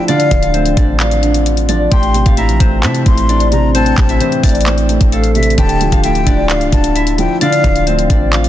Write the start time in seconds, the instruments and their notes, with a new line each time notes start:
Already playing: felt piano D3 F3 A3 D4 D5, harp A3 C4 E4 G4 E5
0.08 felt piano D3, harp D4 D5, flute F5, closed hi-hat
0.20 closed hi-hat
0.31 808-style bass D1, felt piano F3, kick, closed hi-hat
0.42 harp F4 F5, closed hi-hat
0.54 felt piano A3, harp C4 C5, closed hi-hat
0.66 closed hi-hat
0.77 808-style bass A1, felt piano D4, harp D4 D5, kick, closed hi-hat
1.00 harp F4 F5, felt piano D5, clap, closed hi-hat
1.11 closed hi-hat
1.23 felt piano D4, closed hi-hat
1.34 closed hi-hat
1.46 closed hi-hat
1.57 closed hi-hat
1.69 felt piano F3, harp D4 D5, closed hi-hat
1.91 808-style bass A1, felt piano A2, harp G4 G5, flute C6, kick, closed hi-hat
2.03 closed hi-hat
2.14 felt piano C3, closed hi-hat
2.26 808-style bass A1, harp F4 F5, kick, closed hi-hat
2.37 felt piano E3, harp E4 E5, flute A#5, closed hi-hat
2.49 808-style bass A#1, closed hi-hat
2.60 808-style bass A1, felt piano A3, harp C4 C5, kick, closed hi-hat
2.83 808-style bass C3, felt piano C4, harp E4 E5, flute A5, clap, closed hi-hat
2.95 closed hi-hat
3.06 808-style bass A1, felt piano A3, flute C6, kick, closed hi-hat
3.18 closed hi-hat
3.29 harp D4 D5, closed hi-hat
3.40 closed hi-hat
3.52 felt piano C3, flute A#5, closed hi-hat
3.75 felt piano A2, harp C4 C5, flute A5, closed hi-hat
3.86 closed hi-hat
3.98 808-style bass A1, felt piano C3, kick, clap, closed hi-hat
4.09 harp E4 E5, closed hi-hat
4.21 felt piano E3, harp C4 C5, closed hi-hat
4.32 closed hi-hat
4.43 808-style bass A1, felt piano A3, harp D4 D5, kick, closed hi-hat, open hi-hat
4.49 closed hi-hat
4.55 closed hi-hat
4.61 closed hi-hat
4.66 felt piano C4, harp C4 C5, clap, closed hi-hat
4.78 closed hi-hat
4.89 felt piano A3, closed hi-hat
5.01 808-style bass A1, kick, closed hi-hat
5.12 harp A3 A4, flute F5, closed hi-hat
5.24 closed hi-hat
5.35 felt piano C3, flute E5, closed hi-hat
5.43 closed hi-hat
5.50 closed hi-hat
5.58 808-style bass D1, felt piano D3, harp G4 G5, flute A5, kick, closed hi-hat
5.69 closed hi-hat
5.81 felt piano F3, closed hi-hat
5.92 808-style bass D1, harp F4 F5, kick, closed hi-hat
6.04 felt piano A3, harp E4 E5, flute G5, closed hi-hat
6.15 closed hi-hat
6.27 808-style bass D1, felt piano D4, harp D4 D5, kick, closed hi-hat
6.49 harp F4 F5, felt piano D5, flute F5, clap, closed hi-hat
6.61 808-style bass C1, closed hi-hat
6.72 808-style bass D1, felt piano D4, flute A5, kick, closed hi-hat
6.84 closed hi-hat
6.95 harp E4 E5, closed hi-hat
7.07 closed hi-hat
7.18 felt piano F3, flute G5, closed hi-hat
7.41 felt piano D3, harp D4 D5, flute F5, closed hi-hat
7.53 closed hi-hat
7.64 808-style bass D1, felt piano F3, kick, closed hi-hat
7.75 harp F4 F5, closed hi-hat
7.87 felt piano A3, harp C4 C5, closed hi-hat
7.99 closed hi-hat
8.10 808-style bass A1, felt piano D4, harp D4 D5, kick, closed hi-hat
8.33 harp F4 F5, felt piano D5, clap, closed hi-hat
8.44 closed hi-hat